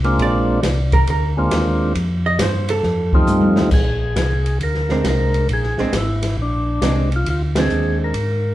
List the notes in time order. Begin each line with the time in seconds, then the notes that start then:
Already playing: C2
0.04 G#3 A#3 C4 D4 F4, ride
0.18 A#1 D5, kick, ride
0.63 C2, kick, snare, hi-hat pedal, ride
0.92 A#4, kick, ride
1.07 D2 A#4, kick, ride
1.37 G#3 A#3 C4 D4 F4
1.51 D#2, kick, snare, hi-hat pedal, ride
1.95 F2, kick, ride
2.26 D#5
2.39 G2 C5, kick, snare, hi-hat pedal, ride
2.69 A4, ride
2.83 F2, kick, snare
3.13 G3 A3 C4 D#4 F4, kick
3.27 G2, hi-hat pedal, high tom
3.41 F2, high tom
3.56 D#2, snare
3.71 A#1 G#4, kick, crash
4.16 C2 G#4, kick, snare, hi-hat pedal, ride
4.46 ride
4.60 D2 A#4, kick, ride
4.74 snare
4.89 G#3 C4 D4, snare
5.04 C2, kick, snare, hi-hat pedal, ride
5.09 A#4
5.34 ride
5.49 A#1, kick, ride
5.53 G#4
5.63 snare
5.78 A#1 G#3 C4 D4, snare
5.93 G#1, kick, snare, hi-hat pedal, ride
5.98 E4
6.22 snare, ride
6.37 A#1, kick
6.42 D4
6.82 C2 G#3 C4 D4, kick, snare, hi-hat pedal, ride
7.12 ride
7.16 F4
7.26 D2, kick, ride
7.30 F4
7.55 G#3 C4 D4 G#4, snare, ride
7.70 D#2, hi-hat pedal
8.04 A#4
8.14 G#2, kick, ride